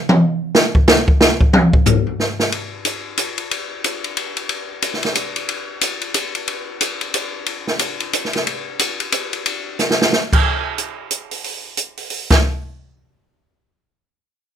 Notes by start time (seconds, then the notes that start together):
0.09 mid tom
0.55 snare
0.75 kick
0.87 snare, hi-hat pedal
1.08 kick
1.21 snare
1.41 kick
1.53 mid tom
1.73 kick
1.86 floor tom, hi-hat pedal
2.07 floor tom
2.20 snare
2.39 snare
2.52 ride
2.85 hi-hat pedal, ride
3.18 hi-hat pedal, ride
3.38 ride
3.51 ride
3.84 hi-hat pedal, ride
4.04 ride
4.17 ride
4.37 ride
4.49 ride
4.82 hi-hat pedal, ride
4.94 snare
5.03 snare, ride
5.15 hi-hat pedal, ride
5.36 ride
5.49 ride
5.81 hi-hat pedal, ride
6.01 ride
6.14 hi-hat pedal, ride
6.35 ride
6.48 ride
6.81 hi-hat pedal, ride
7.01 ride
7.14 hi-hat pedal, ride
7.46 ride
7.67 snare
7.79 hi-hat pedal, ride
8.00 ride
8.13 hi-hat pedal, ride
8.25 snare
8.33 snare, ride
8.47 ride
8.79 hi-hat pedal, ride
9.00 ride
9.12 hi-hat pedal, ride
9.33 ride
9.46 ride
9.79 snare, hi-hat pedal
9.90 snare
10.02 snare
10.13 snare
10.33 kick, crash
10.78 closed hi-hat
11.11 closed hi-hat
11.31 open hi-hat
11.44 open hi-hat
11.77 closed hi-hat
11.97 open hi-hat
12.10 open hi-hat
12.30 kick, snare, crash